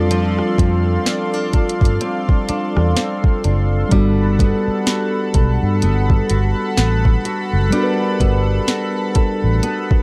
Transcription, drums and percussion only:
0.11 closed hi-hat
0.39 cross-stick
0.58 kick, closed hi-hat
1.06 snare, closed hi-hat
1.53 kick, closed hi-hat
1.69 closed hi-hat
1.81 kick
1.85 closed hi-hat
2.01 closed hi-hat
2.29 kick
2.49 closed hi-hat
2.77 cross-stick
2.97 snare, closed hi-hat
3.24 kick
3.44 closed hi-hat
3.91 kick, closed hi-hat
4.39 kick, closed hi-hat
4.87 snare, closed hi-hat
5.34 kick, closed hi-hat
5.82 closed hi-hat
6.10 kick
6.30 closed hi-hat
6.77 snare, closed hi-hat
7.05 kick
7.25 closed hi-hat
7.72 closed hi-hat
8.20 kick, closed hi-hat
8.68 snare, closed hi-hat
9.15 kick, closed hi-hat
9.63 closed hi-hat
9.91 kick

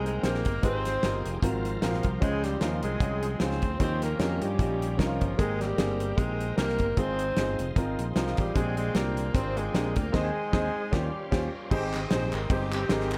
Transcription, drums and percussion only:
0.06 closed hi-hat
0.23 snare, closed hi-hat
0.35 snare
0.45 kick, closed hi-hat
0.63 kick, closed hi-hat
0.85 snare, closed hi-hat
1.03 snare, closed hi-hat
1.26 closed hi-hat
1.43 kick, closed hi-hat
1.65 closed hi-hat
1.82 snare, closed hi-hat
1.93 snare
2.03 kick, closed hi-hat
2.22 kick, closed hi-hat
2.44 snare, closed hi-hat
2.61 snare, closed hi-hat
2.83 closed hi-hat
3.00 kick, closed hi-hat
3.23 closed hi-hat
3.40 snare, closed hi-hat
3.51 snare
3.62 kick, closed hi-hat
3.80 kick, closed hi-hat
4.02 snare, closed hi-hat
4.20 snare, closed hi-hat
4.42 closed hi-hat
4.59 kick, closed hi-hat
4.82 closed hi-hat
4.99 kick, snare, closed hi-hat
5.21 kick, closed hi-hat
5.39 kick, closed hi-hat
5.61 snare, closed hi-hat
5.78 snare, closed hi-hat
6.00 closed hi-hat
6.18 kick, closed hi-hat
6.41 closed hi-hat
6.58 snare, closed hi-hat
6.69 snare
6.79 kick, closed hi-hat
6.97 kick, closed hi-hat
7.19 closed hi-hat
7.37 snare, closed hi-hat
7.59 closed hi-hat
7.76 kick, closed hi-hat
7.99 closed hi-hat
8.16 snare, closed hi-hat
8.27 snare
8.37 kick, closed hi-hat
8.55 kick, closed hi-hat
8.77 closed hi-hat
8.95 snare, closed hi-hat
9.17 closed hi-hat
9.35 kick, closed hi-hat
9.57 closed hi-hat
9.75 snare, closed hi-hat
9.96 kick, closed hi-hat
10.14 kick, snare, crash
10.53 kick, snare
10.93 kick, snare
11.32 kick, snare, crash
11.71 kick, crash
11.93 snare, clap, ride
12.11 snare, ride
12.33 clap, ride
12.50 kick, ride
12.72 clap, ride
12.89 snare, ride
13.01 snare
13.11 clap, ride

